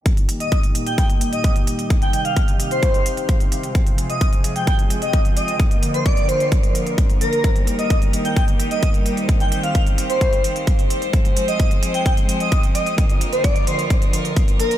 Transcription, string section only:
0, 0, Header, 1, 2, 480
1, 0, Start_track
1, 0, Key_signature, -3, "major"
1, 0, Tempo, 461538
1, 59, Time_signature, 4, 2, 24, 8
1, 15369, End_track
2, 0, Start_track
2, 0, Title_t, "String section"
2, 0, Program_c, 0, 48
2, 60, Note_on_c, 0, 46, 71
2, 60, Note_on_c, 0, 51, 65
2, 60, Note_on_c, 0, 55, 66
2, 60, Note_on_c, 0, 63, 65
2, 60, Note_on_c, 0, 67, 80
2, 1961, Note_off_c, 0, 46, 0
2, 1979, Note_on_c, 0, 48, 74
2, 3861, Note_off_c, 0, 51, 0
2, 3861, Note_off_c, 0, 55, 0
2, 3861, Note_off_c, 0, 67, 0
2, 3862, Note_off_c, 0, 63, 0
2, 3900, Note_on_c, 0, 53, 67
2, 3900, Note_on_c, 0, 56, 65
2, 3900, Note_on_c, 0, 65, 66
2, 3900, Note_on_c, 0, 68, 80
2, 5781, Note_off_c, 0, 48, 0
2, 5801, Note_off_c, 0, 53, 0
2, 5801, Note_off_c, 0, 56, 0
2, 5801, Note_off_c, 0, 68, 0
2, 5820, Note_on_c, 0, 50, 74
2, 5820, Note_on_c, 0, 53, 66
2, 5820, Note_on_c, 0, 58, 67
2, 5820, Note_on_c, 0, 70, 85
2, 7701, Note_off_c, 0, 65, 0
2, 7720, Note_off_c, 0, 50, 0
2, 7721, Note_off_c, 0, 53, 0
2, 7740, Note_on_c, 0, 51, 70
2, 7740, Note_on_c, 0, 55, 67
2, 7740, Note_on_c, 0, 67, 69
2, 9621, Note_off_c, 0, 58, 0
2, 9622, Note_off_c, 0, 70, 0
2, 9659, Note_on_c, 0, 72, 81
2, 9660, Note_on_c, 0, 60, 68
2, 11541, Note_off_c, 0, 55, 0
2, 11541, Note_off_c, 0, 67, 0
2, 11542, Note_off_c, 0, 51, 0
2, 11578, Note_on_c, 0, 53, 75
2, 11578, Note_on_c, 0, 68, 67
2, 11579, Note_on_c, 0, 56, 67
2, 13461, Note_off_c, 0, 60, 0
2, 13461, Note_off_c, 0, 72, 0
2, 13480, Note_off_c, 0, 56, 0
2, 13480, Note_off_c, 0, 68, 0
2, 13500, Note_on_c, 0, 50, 74
2, 13500, Note_on_c, 0, 58, 67
2, 13500, Note_on_c, 0, 65, 70
2, 13500, Note_on_c, 0, 70, 80
2, 15369, Note_off_c, 0, 50, 0
2, 15369, Note_off_c, 0, 53, 0
2, 15369, Note_off_c, 0, 58, 0
2, 15369, Note_off_c, 0, 65, 0
2, 15369, Note_off_c, 0, 70, 0
2, 15369, End_track
0, 0, End_of_file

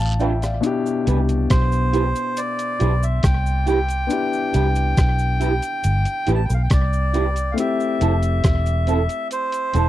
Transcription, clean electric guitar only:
0, 0, Header, 1, 3, 480
1, 0, Start_track
1, 0, Key_signature, 0, "major"
1, 0, Tempo, 867553
1, 352, Time_signature, 4, 2, 24, 8
1, 5471, End_track
2, 0, Start_track
2, 0, Title_t, "Clean electric guitar"
2, 0, Program_c, 0, 27
2, 108, Note_on_c, 0, 62, 81
2, 114, Note_on_c, 0, 65, 80
2, 118, Note_on_c, 0, 71, 81
2, 167, Note_off_c, 0, 62, 0
2, 170, Note_off_c, 0, 65, 0
2, 172, Note_off_c, 0, 71, 0
2, 588, Note_on_c, 0, 64, 64
2, 593, Note_on_c, 0, 67, 67
2, 597, Note_on_c, 0, 71, 70
2, 647, Note_off_c, 0, 64, 0
2, 649, Note_off_c, 0, 67, 0
2, 652, Note_off_c, 0, 71, 0
2, 1066, Note_on_c, 0, 64, 75
2, 1072, Note_on_c, 0, 67, 75
2, 1077, Note_on_c, 0, 71, 83
2, 1126, Note_off_c, 0, 64, 0
2, 1129, Note_off_c, 0, 67, 0
2, 1131, Note_off_c, 0, 71, 0
2, 1547, Note_on_c, 0, 64, 73
2, 1552, Note_on_c, 0, 67, 70
2, 1556, Note_on_c, 0, 71, 87
2, 1606, Note_off_c, 0, 64, 0
2, 1609, Note_off_c, 0, 67, 0
2, 1611, Note_off_c, 0, 71, 0
2, 2026, Note_on_c, 0, 64, 74
2, 2031, Note_on_c, 0, 67, 85
2, 2036, Note_on_c, 0, 71, 85
2, 2086, Note_off_c, 0, 64, 0
2, 2088, Note_off_c, 0, 67, 0
2, 2091, Note_off_c, 0, 71, 0
2, 2507, Note_on_c, 0, 64, 68
2, 2512, Note_on_c, 0, 67, 79
2, 2517, Note_on_c, 0, 71, 62
2, 2566, Note_off_c, 0, 64, 0
2, 2569, Note_off_c, 0, 67, 0
2, 2571, Note_off_c, 0, 71, 0
2, 2987, Note_on_c, 0, 64, 73
2, 2994, Note_on_c, 0, 67, 75
2, 2997, Note_on_c, 0, 71, 76
2, 3046, Note_off_c, 0, 64, 0
2, 3049, Note_off_c, 0, 67, 0
2, 3051, Note_off_c, 0, 71, 0
2, 3467, Note_on_c, 0, 64, 79
2, 3473, Note_on_c, 0, 67, 83
2, 3477, Note_on_c, 0, 71, 93
2, 3526, Note_off_c, 0, 64, 0
2, 3529, Note_off_c, 0, 67, 0
2, 3531, Note_off_c, 0, 71, 0
2, 3948, Note_on_c, 0, 64, 73
2, 3953, Note_on_c, 0, 67, 85
2, 3957, Note_on_c, 0, 71, 75
2, 4006, Note_off_c, 0, 64, 0
2, 4009, Note_off_c, 0, 67, 0
2, 4011, Note_off_c, 0, 71, 0
2, 4428, Note_on_c, 0, 60, 61
2, 4433, Note_on_c, 0, 64, 66
2, 4438, Note_on_c, 0, 69, 79
2, 4486, Note_off_c, 0, 60, 0
2, 4489, Note_off_c, 0, 64, 0
2, 4491, Note_off_c, 0, 69, 0
2, 4908, Note_on_c, 0, 60, 64
2, 4913, Note_on_c, 0, 64, 74
2, 4918, Note_on_c, 0, 69, 73
2, 4966, Note_off_c, 0, 60, 0
2, 4968, Note_off_c, 0, 64, 0
2, 4971, Note_off_c, 0, 69, 0
2, 5386, Note_on_c, 0, 60, 80
2, 5392, Note_on_c, 0, 64, 81
2, 5396, Note_on_c, 0, 69, 86
2, 5445, Note_off_c, 0, 60, 0
2, 5448, Note_off_c, 0, 64, 0
2, 5450, Note_off_c, 0, 69, 0
2, 5471, End_track
3, 0, Start_track
3, 0, Title_t, "Muted clean electric guitar strokes"
3, 3592, Note_on_c, 9, 29, 60
3, 3648, Note_off_c, 9, 29, 0
3, 5471, End_track
0, 0, End_of_file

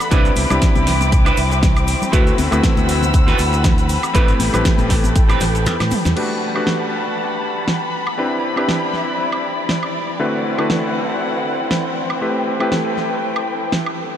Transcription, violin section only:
0, 0, Header, 1, 2, 480
1, 0, Start_track
1, 0, Key_signature, 1, "major"
1, 0, Tempo, 504202
1, 109, Time_signature, 4, 2, 24, 8
1, 13491, End_track
2, 0, Start_track
2, 0, Title_t, "Violin section"
2, 0, Program_c, 0, 48
2, 0, Note_on_c, 0, 83, 84
2, 106, Note_on_c, 0, 86, 90
2, 107, Note_on_c, 0, 76, 69
2, 108, Note_on_c, 0, 60, 82
2, 1990, Note_off_c, 0, 83, 0
2, 2008, Note_off_c, 0, 76, 0
2, 2008, Note_off_c, 0, 86, 0
2, 2027, Note_on_c, 0, 88, 86
2, 2028, Note_on_c, 0, 83, 73
2, 2029, Note_on_c, 0, 78, 69
2, 3910, Note_off_c, 0, 60, 0
2, 3929, Note_off_c, 0, 88, 0
2, 3930, Note_off_c, 0, 78, 0
2, 3948, Note_on_c, 0, 79, 76
2, 3951, Note_on_c, 0, 69, 83
2, 5830, Note_off_c, 0, 83, 0
2, 5849, Note_off_c, 0, 79, 0
2, 5851, Note_off_c, 0, 69, 0
2, 5866, Note_on_c, 0, 55, 65
2, 5867, Note_on_c, 0, 78, 61
2, 5867, Note_on_c, 0, 81, 66
2, 5867, Note_on_c, 0, 83, 77
2, 7768, Note_off_c, 0, 55, 0
2, 7769, Note_off_c, 0, 78, 0
2, 7769, Note_off_c, 0, 81, 0
2, 7786, Note_on_c, 0, 60, 61
2, 7786, Note_on_c, 0, 64, 66
2, 7786, Note_on_c, 0, 74, 65
2, 9669, Note_off_c, 0, 83, 0
2, 9688, Note_off_c, 0, 60, 0
2, 9688, Note_off_c, 0, 64, 0
2, 9703, Note_on_c, 0, 60, 70
2, 9703, Note_on_c, 0, 64, 63
2, 9703, Note_on_c, 0, 71, 62
2, 9703, Note_on_c, 0, 78, 78
2, 11589, Note_off_c, 0, 74, 0
2, 11606, Note_off_c, 0, 71, 0
2, 11606, Note_off_c, 0, 78, 0
2, 11607, Note_off_c, 0, 64, 0
2, 11624, Note_on_c, 0, 71, 64
2, 11625, Note_on_c, 0, 69, 64
2, 11625, Note_on_c, 0, 79, 76
2, 13491, Note_off_c, 0, 60, 0
2, 13491, Note_off_c, 0, 69, 0
2, 13491, Note_off_c, 0, 71, 0
2, 13491, Note_off_c, 0, 79, 0
2, 13491, End_track
0, 0, End_of_file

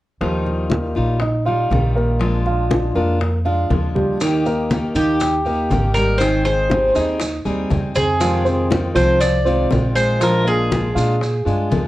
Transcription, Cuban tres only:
0, 0, Header, 1, 2, 480
1, 0, Start_track
1, 0, Key_signature, -3, "major"
1, 0, Tempo, 499584
1, 208, Time_signature, 4, 2, 24, 8
1, 11411, End_track
2, 0, Start_track
2, 0, Title_t, "Cuban tres"
2, 0, Program_c, 0, 25
2, 4763, Note_on_c, 0, 67, 74
2, 5709, Note_on_c, 0, 70, 84
2, 5753, Note_off_c, 0, 67, 0
2, 5936, Note_on_c, 0, 72, 83
2, 5965, Note_off_c, 0, 70, 0
2, 6173, Note_off_c, 0, 72, 0
2, 6197, Note_on_c, 0, 72, 87
2, 6648, Note_off_c, 0, 72, 0
2, 7642, Note_on_c, 0, 68, 97
2, 8326, Note_off_c, 0, 68, 0
2, 8604, Note_on_c, 0, 72, 82
2, 8839, Note_off_c, 0, 72, 0
2, 8843, Note_on_c, 0, 74, 93
2, 9292, Note_off_c, 0, 74, 0
2, 9564, Note_on_c, 0, 72, 93
2, 9814, Note_off_c, 0, 72, 0
2, 9826, Note_on_c, 0, 70, 78
2, 10064, Note_on_c, 0, 68, 76
2, 10065, Note_off_c, 0, 70, 0
2, 10979, Note_off_c, 0, 68, 0
2, 11411, End_track
0, 0, End_of_file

